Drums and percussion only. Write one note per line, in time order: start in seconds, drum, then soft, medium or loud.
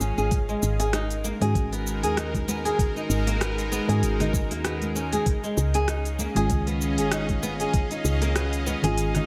0.01 cabasa medium
0.18 cabasa soft
0.31 kick loud
0.31 open hi-hat medium
0.31 cabasa soft
0.49 cabasa soft
0.63 cabasa medium
0.80 open hi-hat soft
0.80 high bongo medium
0.80 cabasa soft
0.93 cross-stick medium
0.93 open hi-hat medium
0.93 cabasa soft
1.10 open hi-hat soft
1.10 cabasa soft
1.24 high conga medium
1.24 cabasa medium
1.42 open hi-hat soft
1.42 high bongo medium
1.42 cabasa soft
1.55 kick loud
1.55 open hi-hat medium
1.55 cabasa soft
1.72 open hi-hat soft
1.72 high bongo soft
1.72 cabasa soft
1.87 cabasa medium
2.04 open hi-hat soft
2.04 high conga soft
2.04 cabasa soft
2.17 cross-stick loud
2.17 open hi-hat medium
2.17 cabasa soft
2.34 kick medium
2.34 open hi-hat soft
2.34 high conga medium
2.34 cabasa soft
2.48 high conga medium
2.48 cabasa medium
2.66 open hi-hat soft
2.66 cabasa soft
2.79 kick loud
2.79 open hi-hat medium
2.79 cabasa soft
2.97 cabasa soft
3.11 cabasa medium
3.27 open hi-hat soft
3.27 high bongo medium
3.27 cabasa soft
3.41 cross-stick loud
3.41 open hi-hat medium
3.41 cabasa soft
3.58 open hi-hat soft
3.58 cabasa soft
3.73 cabasa medium
3.89 open hi-hat soft
3.89 high bongo medium
3.89 cabasa soft
4.03 open hi-hat medium
4.03 cabasa soft
4.20 cross-stick soft
4.20 open hi-hat soft
4.20 low conga medium
4.20 cabasa soft
4.33 kick loud
4.33 high bongo medium
4.33 cabasa medium
4.51 open hi-hat soft
4.51 high bongo medium
4.51 cabasa soft
4.65 cross-stick loud
4.65 open hi-hat medium
4.65 high bongo medium
4.65 cabasa soft
4.82 open hi-hat soft
4.82 high conga medium
4.82 cabasa soft
4.96 cabasa medium
5.12 open hi-hat soft
5.12 high conga medium
5.12 cabasa soft
5.26 kick loud
5.26 open hi-hat medium
5.26 cabasa soft
5.44 cabasa soft
5.58 cabasa medium
5.74 open hi-hat soft
5.74 high bongo medium
5.74 cabasa soft
5.88 cross-stick medium
5.88 open hi-hat medium
5.88 cabasa soft
6.05 open hi-hat soft
6.05 cabasa soft
6.19 high conga medium
6.19 cabasa medium
6.36 open hi-hat soft
6.36 high bongo medium
6.36 cabasa soft
6.50 kick medium
6.50 open hi-hat medium
6.50 cabasa soft
6.67 open hi-hat soft
6.67 high bongo soft
6.67 cabasa soft
6.81 cabasa medium
6.98 open hi-hat soft
6.98 high conga soft
6.98 cabasa soft
7.11 cross-stick loud
7.11 open hi-hat medium
7.11 cabasa soft
7.29 kick medium
7.29 open hi-hat soft
7.29 high conga medium
7.29 cabasa soft
7.43 high conga medium
7.43 cabasa medium
7.60 open hi-hat soft
7.60 cabasa soft
7.73 kick loud
7.73 open hi-hat medium
7.73 cabasa soft
7.91 open hi-hat soft
7.91 cabasa soft
8.05 cabasa medium
8.22 open hi-hat soft
8.22 high bongo medium
8.22 cabasa soft
8.36 cross-stick loud
8.36 open hi-hat medium
8.36 cabasa soft
8.53 open hi-hat soft
8.53 cabasa soft
8.67 high conga medium
8.67 cabasa medium
8.84 open hi-hat soft
8.84 high bongo medium
8.84 low conga medium
8.84 cabasa soft
8.98 open hi-hat medium
8.98 cabasa soft
9.15 cross-stick soft
9.15 open hi-hat soft
9.15 low conga medium
9.15 cabasa soft